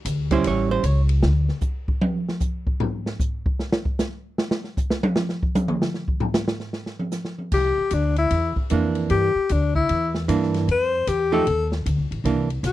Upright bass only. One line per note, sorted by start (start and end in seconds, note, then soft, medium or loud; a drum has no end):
0.05 0.44 D2 medium
0.45 0.83 A1 medium
0.83 1.22 C#2 medium
1.23 1.48 D2 medium
7.52 7.75 C2 medium
7.78 muted upright bass stroke soft
7.91 8.30 D2 medium
8.31 8.54 E2 medium
8.56 muted upright bass stroke soft
8.71 9.09 F2 medium
9.10 9.34 G2 medium
9.35 muted upright bass stroke soft
9.50 9.88 D2 medium
9.90 10.27 E2 medium
10.28 10.66 G2 medium
10.68 11.06 F2 medium
11.07 11.45 E2 medium
11.47 11.85 D#2 medium
11.86 11.99 D2 medium
11.98 12.10 C2 soft
12.11 12.23 A1 medium
12.24 12.63 C2 medium
12.63 12.72 B1 medium